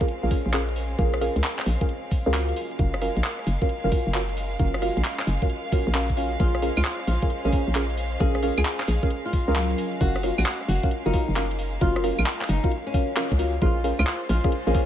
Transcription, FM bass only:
0.23 A#1
0.46 A#1
0.99 A#1
1.36 C#2
1.66 A#1
2.26 C#2
2.79 F#1
3.17 A#1
3.47 F#1
3.84 F#1
4.07 F#1
4.60 F#1
4.97 A#1
5.27 F#1
5.87 A#1
6.40 A#1
6.77 C#2
7.07 A#1
7.45 A#1
7.67 A#1
8.20 A#1
8.58 C#2
8.88 A#1
9.48 C#2
10.01 F#1
10.38 A#1
10.68 F#1
11.06 F#1
11.28 F#1
11.81 F#1
12.19 A#1
12.49 F#1
13.31 C#2
13.62 A#1
13.99 C#2
14.29 A#1
14.67 A#1

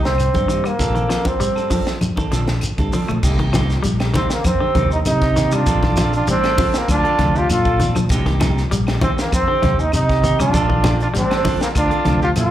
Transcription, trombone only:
0.05 C4
0.66 A#3
1.27 C4
4.15 C4
4.32 A#3
4.46 C4
4.92 D#4
5.07 D#4
5.55 D4
6.16 D4
6.30 C4
6.78 A#3
6.91 D4
7.37 F4
7.52 F4
9.02 C4
9.20 A#3
9.35 C4
9.80 D#4
9.94 D#4
10.41 D4
11.02 D4
11.17 C4
11.63 A#3
11.77 D4
12.24 F4
12.38 F4

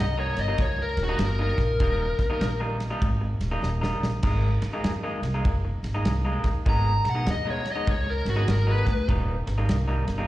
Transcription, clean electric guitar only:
0.17 D#3 G3 A#3 D#4
0.37 muted clean electric guitar stroke
0.48 D#3 G3 A#3 D#4
0.78 muted clean electric guitar stroke
1.09 D#3 G3 A#3 D#4
1.39 D#3 G3 A#3 D#4
1.80 D#3 G3 A#3 D#4
2.19 muted clean electric guitar stroke
2.30 D#3 G3 A#3 D#4
2.60 D#3 G3 A#3 D#4
2.80 muted clean electric guitar stroke
2.90 D#3 G3 A#3 D#4
3.21 muted clean electric guitar stroke
3.51 D#3 G3 A#3 D#4
3.81 D#3 G3 A#3 D#4
4.23 D#3 G#3 A#3 D#4
4.62 muted clean electric guitar stroke
4.73 D#3 G#3 A#3 D#4
5.03 D#3 G#3 A#3 D#4
5.23 muted clean electric guitar stroke
5.34 D#3 G#3 A#3 D#4
5.65 muted clean electric guitar stroke
5.94 D#3 G#3 A#3 D#4
6.25 D#3 G#3 A#3 D#4
6.66 D#3 G#3 B3 D#4
7.05 muted clean electric guitar stroke
7.15 D#3 G#3 B3 D#4
7.45 D#3 G#3 B3 D#4
7.65 muted clean electric guitar stroke
7.75 D#3 G#3 B3 D#4
8.06 muted clean electric guitar stroke
8.36 D#3 G#3 B3 D#4
8.67 D#3 G#3 B3 D#4
9.08 D#3 G3 A#3 D#4
9.47 muted clean electric guitar stroke
9.58 D#3 G3 A#3 D#4
9.88 D#3 G3 A#3 D#4
10.08 muted clean electric guitar stroke
10.18 D#3 G3 A#3 D#4

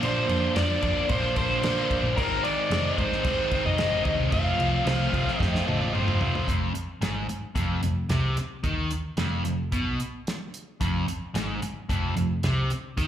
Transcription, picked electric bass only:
0.03 A#2
0.28 F2
0.57 F2
0.83 F2
1.09 A#2
2.03 A#2
2.17 G#1
2.70 F1
2.98 G#2
3.65 F1
3.91 G#1
4.05 D#2
4.18 C2
4.32 F1
4.59 C2
4.86 C2
5.13 C2
5.40 F2
5.67 A1
5.94 G1
6.20 F1
6.48 F1
6.74 muted picked electric bass stroke
7.01 G#1
7.29 muted picked electric bass stroke
7.55 F1
7.82 F1
8.09 C2
8.36 muted picked electric bass stroke
8.63 D#2
8.91 muted picked electric bass stroke
9.17 F1
9.44 F1
9.72 B1
10.81 F1
11.07 muted picked electric bass stroke
11.35 G#1
11.62 muted picked electric bass stroke
11.89 F1
12.16 F1
12.44 C2
12.71 muted picked electric bass stroke
12.97 D#2

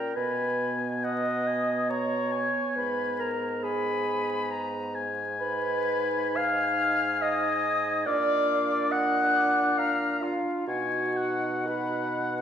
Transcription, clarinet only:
Already playing: A#4
0.16 B4
1.03 D#5
1.90 C#5
2.76 B4
3.19 A#4
3.63 G#4
5.40 B4
6.37 F5
7.22 D#5
8.06 D5
8.92 F#5
9.78 F5
10.22 F4
10.67 F#4
11.67 B4

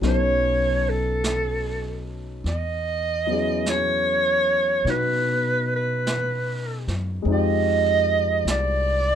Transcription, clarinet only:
0.08 C#5
0.89 A4
2.48 D#5
3.69 C#5
4.90 B4
5.76 B4
7.32 D#5
8.50 D5

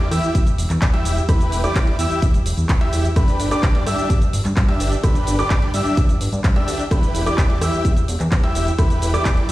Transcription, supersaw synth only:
0.11 E4 G4 E5
0.94 E4 G4 E5
1.29 E4 G4 B4
1.64 E4 G4 D5
1.99 E4 G4 E5
2.81 E4 G4 E5
3.16 D4 G4 B4
3.51 D4 G4 D5
3.86 D4 G4 E5
4.69 D4 G4 E5
5.04 D4 G4 B4
5.39 D4 G4 D5
5.74 D4 G4 E5
6.56 D4 G4 E5
6.91 E4 G4 B4
7.26 E4 G4 D5
7.61 E4 G4 E5
8.43 E4 G4 E5
8.79 E4 G4 B4
9.14 E4 G4 D5

